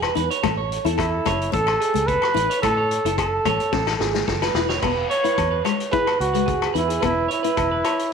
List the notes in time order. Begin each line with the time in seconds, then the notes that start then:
0.02 B4, cross-stick, low agogo
0.15 E2 D#4 B4, closed hi-hat
0.31 C#5, closed hi-hat
0.43 A1 A3 A4, kick, cross-stick, closed hi-hat, low agogo
0.57 C#5
0.72 closed hi-hat
0.85 E2 E4 A4, closed hi-hat
0.98 E4 A4, kick, cross-stick, closed hi-hat, low agogo
1.25 F#1 A3 C#5, kick, cross-stick, closed hi-hat, low agogo
1.41 closed hi-hat
1.52 A1 A4, muted nylon-string guitar stroke, kick, closed hi-hat
1.67 cross-stick, low agogo
1.80 G#4, closed hi-hat
1.94 C#2 A3, closed hi-hat
2.07 A4 B4, kick, closed hi-hat
2.22 B4, cross-stick, low agogo
2.34 A1 E4 B4, closed hi-hat
2.50 C#5, closed hi-hat
2.62 A2 A4, muted nylon-string guitar stroke, kick, cross-stick, closed hi-hat, low agogo
2.77 C#5
2.91 closed hi-hat
3.05 F#1 E4 A4, closed hi-hat
3.18 A4, kick, cross-stick, closed hi-hat, low agogo
3.45 A1 A3 C#5, kick, cross-stick, closed hi-hat, low agogo
3.60 closed hi-hat
3.73 A1 C#4 A4, kick, snare
3.87 snare, low agogo
4.00 G#1 G#4, snare
4.14 A3, snare
4.27 F#1 A4, kick, snare
4.42 B4, snare, low agogo
4.54 E1 E4 B4, snare
4.69 C#5, snare
4.82 E1 B3 B4, kick, cross-stick, crash, low agogo
5.10 C#5, closed hi-hat
5.24 E4 B4, closed hi-hat
5.38 E2, kick, cross-stick, closed hi-hat, low agogo
5.51 B4
5.65 G#3 C#5, cross-stick, closed hi-hat, low agogo
5.80 closed hi-hat
5.92 E4 G#4 B4, kick, closed hi-hat
6.06 B4, cross-stick, low agogo
6.20 C#2 F#4, closed hi-hat
6.34 G#3 B4, closed hi-hat
6.46 G#4, kick, closed hi-hat
6.62 cross-stick, low agogo
6.74 E2 D#4 E4 B4, closed hi-hat
6.88 G#4, closed hi-hat
7.01 E1 B3 E4 B4, kick, cross-stick, closed hi-hat, low agogo
7.28 C#5, closed hi-hat
7.32 E4
7.43 E4 B4, closed hi-hat
7.57 E1, kick, cross-stick, closed hi-hat, low agogo
7.72 B4
7.84 C#5, cross-stick, closed hi-hat, low agogo
7.99 closed hi-hat